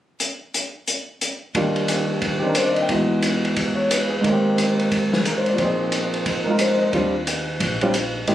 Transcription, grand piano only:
1.55 2.90 D#2 soft
1.55 2.41 D#3 soft
1.55 2.90 G3 soft
1.55 2.44 D4 soft
1.55 2.91 F4 soft
2.39 2.89 D#3 soft
2.39 2.50 G4 soft
2.44 2.90 C4 soft
2.44 2.91 D4 soft
2.48 2.60 A#4 soft
2.57 2.72 C5 soft
2.65 2.79 D5 soft
2.74 2.84 D#5 soft
2.82 2.93 G5 soft
2.90 4.24 E2 soft
2.90 4.25 E3 soft
2.90 4.25 G#3 soft
2.90 4.25 D#4 soft
2.90 4.25 F#4 soft
3.75 3.98 C#5 soft
3.92 4.17 B4 soft
4.09 4.32 G#4 soft
4.21 5.57 G#2 soft
4.21 5.59 D#3 soft
4.27 5.60 A#3 soft
4.27 5.58 C4 soft
4.32 5.63 G4 medium
5.15 5.31 G#4 soft
5.27 5.46 A#4 soft
5.38 5.54 C5 soft
5.48 5.65 D5 soft
5.54 6.91 A#2 soft
5.54 6.92 F3 soft
5.59 6.92 C4 soft
5.59 6.47 D#4 soft
5.64 6.96 G#4 soft
6.44 6.93 G#3 soft
6.44 6.94 D#4 soft
6.44 6.49 A#4 soft
6.49 6.93 F4 soft
6.49 6.95 A#4 soft
6.61 6.86 C5 soft
6.77 7.00 D#5 soft
6.94 7.13 G3 soft
6.94 7.13 C4 soft
6.94 7.13 D4 soft
6.94 7.13 F4 medium
7.82 7.93 G3 medium
7.82 7.93 C4 medium
7.82 7.93 D4 medium
7.82 7.94 F4 medium
8.28 8.35 G#3 medium
8.28 8.35 A#3 soft
8.28 8.35 E4 soft
8.28 8.35 G4 medium

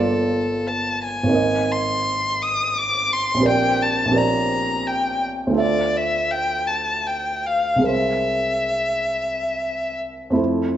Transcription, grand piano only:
0.00 1.40 G1 soft
0.00 1.27 A#3 soft
0.00 1.40 F4 soft
0.00 1.39 A4 soft
0.00 1.39 D5 soft
1.23 3.37 G#1 medium
1.23 3.38 A#3 soft
1.29 3.40 D#4 soft
1.29 3.41 A#4 soft
1.35 3.42 D#5 soft
3.34 4.04 A#1 soft
3.34 4.07 C4 soft
3.40 4.09 G4 soft
3.40 4.12 A#4 soft
3.45 4.15 D5 soft
4.05 5.50 A#1 medium
4.05 5.51 C4 soft
4.11 5.53 G4 soft
4.11 5.54 A#4 soft
4.16 5.55 D5 soft
5.47 7.78 D2 soft
5.47 7.80 A3 soft
5.52 7.81 F4 soft
5.52 7.82 A4 soft
5.58 7.84 E5 soft
7.76 10.28 C2 soft
7.76 10.29 G#3 soft
7.81 10.31 G#4 soft
7.81 10.32 A#4 soft
7.87 10.34 C5 soft
10.30 10.77 F2 soft
10.30 10.77 A3 soft
10.30 10.77 E4 soft
10.35 10.77 A4 soft
10.35 10.77 C5 soft

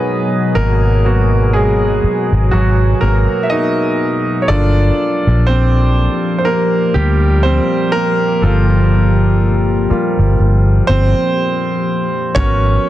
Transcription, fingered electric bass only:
0.56 2.00 G#1 loud
2.04 muted fingered electric bass stroke soft
2.32 2.49 G#1 medium
2.53 2.93 G#1 loud
3.02 3.25 G#1 medium
4.50 4.89 G1 loud
5.27 6.07 A#1 medium
6.95 7.58 D2 medium
8.43 9.86 G1 loud
9.91 muted fingered electric bass stroke soft
10.19 10.36 G1 medium
10.40 10.79 G1 medium
10.89 11.12 G1 medium
12.36 12.76 G#1 loud

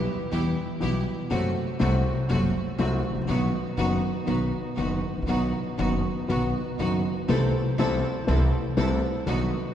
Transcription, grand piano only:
0.32 0.53 E2 medium
0.32 0.53 E3 medium
0.32 0.53 G3 medium
0.32 0.53 B3 medium
0.32 0.53 G4 medium
0.80 1.02 B1 medium
0.80 1.02 B2 medium
0.80 1.02 E3 medium
0.80 1.02 G3 medium
0.80 1.02 B3 medium
0.80 1.02 G4 medium
1.30 1.52 F#2 medium
1.30 1.51 C3 medium
1.30 1.52 F#3 medium
1.30 1.52 A3 medium
1.30 1.52 F#4 medium
1.80 2.01 C2 medium
1.80 2.01 C3 loud
1.80 2.01 F#3 medium
1.80 2.01 A3 medium
1.80 2.01 F#4 medium
2.30 2.51 F#2 medium
2.30 2.50 C3 medium
2.30 2.51 F#3 medium
2.30 2.51 A3 medium
2.30 2.51 F#4 medium
2.79 3.00 C2 loud
2.79 2.99 C3 medium
2.79 2.99 F#3 medium
2.79 3.00 A3 medium
2.79 3.00 F#4 medium
3.10 3.16 G#1 medium
3.16 3.22 A1 medium
3.22 3.28 A#1 medium
3.29 3.50 B1 loud
3.29 3.49 B2 medium
3.29 3.49 D#3 medium
3.29 3.50 F#3 medium
3.29 3.50 B3 medium
3.29 3.49 F#4 medium
3.78 3.99 F#1 medium
3.78 3.99 F#2 loud
3.78 3.99 D#3 medium
3.78 3.99 F#3 medium
3.78 3.99 B3 medium
3.78 3.99 F#4 medium
4.26 4.48 B1 medium
4.26 4.48 B2 medium
4.26 4.48 D#3 medium
4.26 4.49 F#3 medium
4.26 4.48 B3 medium
4.26 4.48 F#4 medium
4.77 4.99 F#1 medium
4.77 4.99 F#2 medium
4.77 4.99 D#3 medium
4.77 4.99 F#3 medium
4.77 4.99 B3 medium
4.77 4.99 F#4 medium
5.09 5.16 G#1 soft
5.15 5.22 A1 medium
5.21 5.28 A#1 medium
5.28 5.50 B1 medium
5.28 5.50 B2 medium
5.28 5.50 D#3 medium
5.28 5.50 F#3 medium
5.28 5.50 B3 medium
5.28 5.50 F#4 medium
5.78 6.00 F#1 medium
5.78 6.00 F#2 medium
5.78 6.00 D#3 medium
5.78 6.00 F#3 medium
5.78 6.00 B3 medium
5.78 6.01 F#4 medium
6.28 6.50 B1 medium
6.28 6.50 B2 medium
6.28 6.50 D#3 medium
6.28 6.50 F#3 medium
6.28 6.50 B3 medium
6.28 6.50 F#4 medium
6.80 7.01 F#1 medium
6.80 7.01 F#2 medium
6.80 7.01 D#3 medium
6.80 7.01 F#3 medium
6.80 7.01 B3 medium
6.80 7.01 F#4 medium
7.28 7.50 C2 medium
7.28 7.50 C3 loud
7.28 7.50 E3 medium
7.28 7.50 A3 medium
7.28 7.50 C4 medium
7.28 7.51 A4 medium
7.79 8.00 C2 loud
7.79 8.00 C3 loud
7.79 8.00 E3 medium
7.79 8.00 A3 medium
7.79 8.00 C4 medium
7.79 8.00 A4 medium
8.27 8.49 C2 loud
8.27 8.49 C3 medium
8.27 8.49 E3 medium
8.27 8.49 A3 medium
8.27 8.49 C4 medium
8.27 8.49 A4 medium
8.77 8.99 C2 loud
8.77 8.99 C3 medium
8.77 8.99 E3 medium
8.77 8.99 A3 medium
8.77 8.99 C4 medium
8.77 8.99 A4 medium
9.26 9.48 B1 medium
9.26 9.48 B2 medium
9.26 9.48 D#3 medium
9.26 9.48 F#3 medium
9.26 9.48 B3 medium
9.26 9.49 F#4 medium

